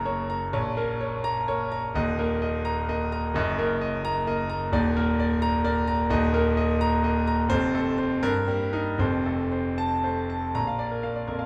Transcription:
Already playing: F#1 F#2 A#3 A#4 C#5 A#5
0.05 A#3 C#5
0.30 A#5
0.53 A#1 C#5
0.77 A#3 A#4
1.01 C#5
1.24 A#5
1.48 A#3 C#5
1.72 A#5
1.94 D#1 D#2 D#5
2.19 A#3 A#4
2.42 D#5
2.65 A#5
2.89 A#3 D#5
3.12 A#5
3.34 F#1 F#2 D#5
3.59 A#3 A#4
3.81 D#5
4.05 A#5
4.27 A#3 D#5
4.50 A#5
4.72 D#1 D#2 D5
4.97 A#3 A#4
5.20 D5
5.42 A#5
5.64 A#3 D5
5.88 A#5
6.10 D#1 D#2 D#5
6.34 A#3 A#4
6.57 D#5
6.81 A#5
7.04 A#3 D#5
7.27 A#5
7.49 F1 F2 C5
7.74 A3 A4
7.98 C5
8.23 G2 A#4
8.48 G3 A#3
8.73 D#4 A#4
8.98 F1 F2 C5
9.26 A3 A4
9.52 C5
9.78 A5
10.04 A3 C5
10.30 A5
10.55 A#1 A#5
10.67 F5
10.79 D5
10.91 A#4
11.03 A#3 F5
11.16 D5
11.27 F2 A#4
11.39 F5

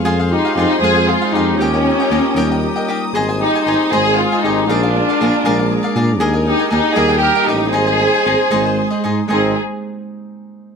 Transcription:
Already playing: C#4 D#4 F4 G#4 F5
0.04 F2 F4 G#4 C5 F5 C6
0.20 G#4 C5 F5
0.31 D#4 F4 G4
0.45 G#4 C5 F5
0.55 F2 C4 D#4 F4 G4 G#4
0.59 C5 F5
0.79 F2 G#3 G#4 C5
0.83 F4 G#4 C5 F5
0.96 G#4 C5 F5
1.07 F4 G#4
1.22 G#4 C5 F5
1.32 F2 D#4 F4 G4 G#4 C5
1.37 F5
1.58 D#2 C#4 G4 A#4 G5 D#6
1.62 D#5 G5
1.74 A#4 D#5 G5
1.86 D#4
2.00 A#4 D#5 G5
2.11 D#2 A#3 G4 A#4 D#5 G5
2.35 D#2 G3 G4 A#4 D#5 G5
2.51 A#4 D#5 G5
2.64 G4
2.76 A#4 D#5 G5
2.88 D#4 G4 A#4 D#5 G5
3.13 G#1 G#4 C5 D#5 G#5
3.29 C5 D#5 G#5
3.40 D#4 G4
3.55 C5 D#5 G#5
3.64 G#1 C4 D#4 G4 G#4 C5 D#5 G#5
3.91 G#1 G#3 G#4 C5 D#5 G#5
4.06 C5 D#5 G#5
4.17 F4 G#4
4.32 C5 D#5 G#5
4.43 G#1 D#4 G4 G#4 C5 D#5 G#5
4.67 A#1 D4 F4 G#4 A#4 D5 F5 D6
4.83 A#4 D5 F5
4.96 D4
5.09 A#4 D5 F5
5.20 A#1 A#3 G#4 A#4 D5 F5
5.44 A#1 G#3 G#4 A#4 D5 F5
5.58 A#4 D5 F5
5.72 G#4
5.83 A#4 D5 F5
5.95 A#2 D4 G#4 A#4 D5 F5
6.19 D#2 G#4 A#4 D#5 G#5 D#6
6.33 A#4 D#5 G#5
6.47 D#4 G4
6.59 A#4 D#5 G#5
6.71 D#2 A#3 D#4 G4 G#4 A#4 D#5 G#5
6.95 D#2 G3 G4 G#4 A#4 D#5 G5
7.08 A#4 D#5 G5
7.20 G4 A#4
7.35 A#4 D#5 G5
7.45 A1 D#4 G4
7.49 A#4 D#5 G5
7.70 G#1 D#4 G#4 C5 D#5 G#5
7.87 G#4 C5 D#5
8.00 D#4
8.14 G#4 C5 D#5
8.25 G#1 C4 D#4 G#4 C5 D#5
8.51 G#1 G#3 D#4 G#4 C5 D#5
8.65 G#4 C5 D#5
8.78 G#4
8.90 G#4 C5 D#5
9.04 G#2 D#4 G#4 C5 D#5
9.28 G#1 G#3 C4 D#4 G#4 C5 D#5
9.32 D#4

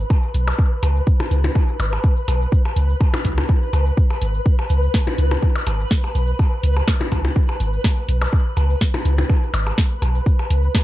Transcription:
Already playing: B4
0.10 kick, cabasa, percussion blips
0.23 cabasa
0.34 B1, closed hi-hat, cabasa
0.48 cabasa, percussion blips
0.58 kick, cabasa
0.83 C#2, closed hi-hat, cabasa, percussion blips
0.96 cabasa
1.07 kick, cabasa
1.20 percussion blips, cabasa
1.31 C#2, closed hi-hat, cabasa
1.44 percussion blips, cabasa
1.55 kick, cabasa, percussion blips
1.68 cabasa
1.79 G#1, closed hi-hat, cabasa, percussion blips
1.92 cabasa, percussion blips
2.03 kick, cabasa
2.17 cabasa
2.28 B1, closed hi-hat, cabasa, percussion blips
2.42 cabasa
2.52 kick, cabasa
2.65 percussion blips
2.76 C#2, closed hi-hat, cabasa
2.89 cabasa
3.01 kick, cabasa, percussion blips
3.14 percussion blips, cabasa
3.24 C#2, kick, closed hi-hat, cabasa
3.38 percussion blips, cabasa
3.49 kick, cabasa
3.62 cabasa
3.73 C#2, closed hi-hat, cabasa, percussion blips
3.86 cabasa
3.97 kick, cabasa
4.10 cabasa, percussion blips
4.22 G#1, closed hi-hat, cabasa
4.34 cabasa
4.46 kick, cabasa
4.59 percussion blips
4.69 C#2, closed hi-hat, cabasa
4.83 cabasa
4.94 kick, snare, cabasa, percussion blips
5.06 percussion blips, cabasa
5.18 C#2, closed hi-hat, cabasa
5.31 percussion blips, cabasa
5.43 kick, cabasa
5.56 cabasa, percussion blips
5.66 G#1, closed hi-hat, cabasa, percussion blips
5.80 cabasa
5.91 kick, snare, cabasa
6.04 cabasa, percussion blips
6.15 B1, closed hi-hat, cabasa
6.27 cabasa
6.39 kick, cabasa, percussion blips
6.63 C#2, closed hi-hat, cabasa
6.77 cabasa, percussion blips
6.87 kick, snare, cabasa, percussion blips
7.01 percussion blips, cabasa
7.12 C#2, kick, closed hi-hat, cabasa, percussion blips
7.25 percussion blips, cabasa
7.36 kick, cabasa
7.47 cabasa, percussion blips
7.60 G#1, closed hi-hat, cabasa
7.73 cabasa
7.84 kick, snare, cabasa, percussion blips
7.97 cabasa
8.08 B1, closed hi-hat, cabasa
8.22 cabasa, percussion blips
8.32 kick, cabasa
8.57 C#2, closed hi-hat, cabasa, percussion blips
8.70 cabasa
8.80 kick, snare, cabasa
8.94 percussion blips, cabasa
9.05 C#2, closed hi-hat, cabasa
9.18 percussion blips, cabasa
9.29 kick, cabasa, percussion blips
9.43 cabasa
9.54 G#1, closed hi-hat, cabasa, percussion blips
9.66 cabasa, percussion blips
9.78 kick, snare, cabasa
9.91 cabasa
10.02 B1, closed hi-hat, cabasa, percussion blips
10.15 cabasa
10.26 kick, cabasa
10.39 cabasa, percussion blips
10.50 C#2, closed hi-hat, cabasa
10.63 cabasa
10.75 kick, snare, cabasa, percussion blips

